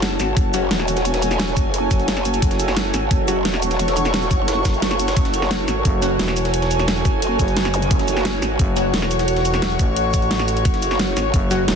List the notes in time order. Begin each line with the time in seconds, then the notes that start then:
Already playing: F#1 F#4 A4 C#5 A5
0.02 snare, closed hi-hat
0.20 G#1, snare, closed hi-hat, cabasa
0.36 F#1 G#5, kick, closed hi-hat
0.54 F#3 C#4 F#4, closed hi-hat, cabasa
0.71 E1, snare, closed hi-hat
0.79 snare
0.88 closed hi-hat, cabasa
0.97 snare, closed hi-hat, cabasa
1.05 closed hi-hat
1.14 snare, closed hi-hat
1.22 closed hi-hat, cabasa
1.31 snare, closed hi-hat, cabasa
1.40 snare, closed hi-hat
1.48 cabasa
1.57 F#1, kick, closed hi-hat, cabasa
1.74 closed hi-hat
1.91 F#1, kick, closed hi-hat, cabasa
2.00 closed hi-hat
2.08 snare, closed hi-hat
2.17 snare, closed hi-hat
2.25 closed hi-hat, cabasa
2.34 closed hi-hat, cabasa
2.42 F#1 F#5, kick, closed hi-hat
2.51 snare, closed hi-hat
2.59 closed hi-hat, cabasa
2.68 snare
2.77 snare, closed hi-hat
2.94 G#1, snare, closed hi-hat, cabasa
3.11 F#1 C#6, kick, closed hi-hat
3.28 F#3 C#4 F#4, closed hi-hat, cabasa
3.45 E1, snare, closed hi-hat
3.54 snare
3.62 closed hi-hat, cabasa
3.71 snare, closed hi-hat, cabasa
3.79 closed hi-hat
3.88 snare, closed hi-hat
3.97 closed hi-hat, cabasa
4.05 snare, closed hi-hat, cabasa
4.14 snare, closed hi-hat
4.22 cabasa
4.31 F#1, kick, closed hi-hat, cabasa
4.48 snare, closed hi-hat
4.65 F#1, kick, snare, closed hi-hat, cabasa
4.74 closed hi-hat
4.82 snare, closed hi-hat
4.91 snare, closed hi-hat
4.99 closed hi-hat, cabasa
5.08 snare, closed hi-hat, cabasa
5.17 F#1 C#5, kick, closed hi-hat
5.25 snare, closed hi-hat
5.34 closed hi-hat, cabasa
5.42 snare
5.51 snare, closed hi-hat
5.68 G#1, snare, closed hi-hat, cabasa
5.85 F#1 G#5, kick, closed hi-hat
6.02 F#3 C#4 F#4, closed hi-hat, cabasa
6.19 E1, snare, closed hi-hat
6.28 snare
6.37 closed hi-hat, cabasa
6.45 snare, closed hi-hat, cabasa
6.54 closed hi-hat
6.62 snare, closed hi-hat
6.71 closed hi-hat, cabasa
6.79 snare, closed hi-hat, cabasa
6.88 snare, closed hi-hat
6.97 cabasa
7.05 F#1, kick, closed hi-hat, cabasa
7.22 closed hi-hat
7.39 F#1, kick, closed hi-hat, cabasa
7.48 closed hi-hat
7.57 snare, closed hi-hat
7.65 snare, closed hi-hat
7.74 closed hi-hat, zap, cabasa
7.82 closed hi-hat, cabasa
7.91 F#1 F#5, kick, closed hi-hat
7.99 snare, closed hi-hat
8.08 closed hi-hat, cabasa
8.16 snare
8.25 snare, closed hi-hat
8.42 G#1, snare, closed hi-hat, cabasa
8.59 F#1 C#6, kick, closed hi-hat
8.76 F#3 C#4 F#4, closed hi-hat, cabasa
8.94 E1, snare, closed hi-hat
9.02 snare
9.11 closed hi-hat, cabasa
9.19 snare, closed hi-hat, cabasa
9.28 closed hi-hat
9.36 snare, closed hi-hat
9.45 closed hi-hat, cabasa
9.54 snare, closed hi-hat, cabasa
9.62 snare, closed hi-hat
9.71 cabasa
9.79 A1, kick, closed hi-hat, cabasa
9.96 closed hi-hat
10.14 kick, closed hi-hat, cabasa
10.22 closed hi-hat
10.31 snare, closed hi-hat
10.39 snare, closed hi-hat
10.48 closed hi-hat, cabasa
10.57 closed hi-hat, cabasa
10.65 F#1 C#5, kick, closed hi-hat
10.74 snare, closed hi-hat
10.82 closed hi-hat, cabasa
10.91 snare
10.99 snare, closed hi-hat
11.17 G#1, snare, closed hi-hat, cabasa
11.34 F#1 G#5, kick, closed hi-hat
11.51 F#3 C#4 F#4, closed hi-hat, cabasa
11.68 E1, snare, closed hi-hat